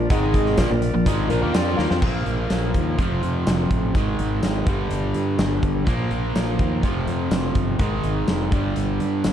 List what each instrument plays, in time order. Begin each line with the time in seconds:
0.10 fingered electric bass G#1, overdriven electric guitar G#2 D#3 G#3, tonewheel organ G#3 D#4 G#4 D#5, reed electric piano D#4 G#4 D#5, kick, closed hi-hat
0.34 kick, closed hi-hat
0.46 snare
0.57 fingered electric bass A#1, overdriven electric guitar A#2 F3, tonewheel organ D4 F4 A#4 D5, reed electric piano F4 A#4 D5, kick, snare, closed hi-hat, tambourine
0.71 fingered electric bass A#1, overdriven electric guitar A#2 F3
0.82 closed hi-hat
0.94 fingered electric bass A#1, overdriven electric guitar A#2 F3
1.06 fingered electric bass G#1, overdriven electric guitar G#2 D#3 G#3, kick, closed hi-hat
1.28 fingered electric bass A#1, overdriven electric guitar A#2 F3, reed electric piano F4 A#4 D5, closed hi-hat
1.42 fingered electric bass D#2, overdriven electric guitar D#3 A#3
1.54 fingered electric bass F2, overdriven electric guitar F3 C4 F4, reed electric piano G5, snare, closed hi-hat, tambourine
1.77 fingered electric bass D#2, overdriven electric guitar D#3 A#3, reed electric piano F4 A#4 F5, snare
1.90 fingered electric bass F2, overdriven electric guitar F3 C4, snare
2.02 fingered electric bass A#1, overdriven electric guitar A#2 F3 A#3, kick, crash
2.26 fingered electric bass A#1, closed hi-hat
2.50 fingered electric bass A#1, snare, closed hi-hat, tambourine
2.74 fingered electric bass D#2, kick, closed hi-hat
2.99 fingered electric bass F1, overdriven electric guitar F2 C3 F3, kick, closed hi-hat
3.23 fingered electric bass F2, closed hi-hat
3.47 fingered electric bass F1, snare, closed hi-hat, tambourine
3.70 fingered electric bass A1, kick, closed hi-hat
3.94 fingered electric bass G#1, overdriven electric guitar G#2 D#3 G#3, kick, closed hi-hat
4.19 fingered electric bass G#1, closed hi-hat
4.43 fingered electric bass G#1, snare, closed hi-hat, tambourine
4.66 fingered electric bass G1, overdriven electric guitar G2 D3 G3, kick, closed hi-hat
4.91 fingered electric bass G1, closed hi-hat
5.14 fingered electric bass G2, closed hi-hat
5.39 fingered electric bass G1, snare, closed hi-hat, tambourine
5.63 fingered electric bass G1, kick, closed hi-hat
5.86 fingered electric bass A#1, overdriven electric guitar A#2 F3 A#3, kick, closed hi-hat
6.11 fingered electric bass A#1, closed hi-hat
6.35 fingered electric bass A#1, snare, closed hi-hat, tambourine
6.59 fingered electric bass D#2, kick, closed hi-hat
6.83 fingered electric bass F1, overdriven electric guitar F2 C3 F3, kick, closed hi-hat
7.07 fingered electric bass F2, closed hi-hat
7.31 fingered electric bass F1, snare, closed hi-hat, tambourine
7.55 fingered electric bass G1, kick, closed hi-hat
7.79 fingered electric bass G#1, overdriven electric guitar G#2 D#3 G#3, kick, closed hi-hat
8.04 fingered electric bass G#1, closed hi-hat
8.28 fingered electric bass F1, snare, closed hi-hat, tambourine
8.52 fingered electric bass G1, overdriven electric guitar G2 D3 G3, kick, closed hi-hat
8.76 fingered electric bass G1, closed hi-hat
9.00 fingered electric bass G2, closed hi-hat
9.24 fingered electric bass G1, snare, closed hi-hat, tambourine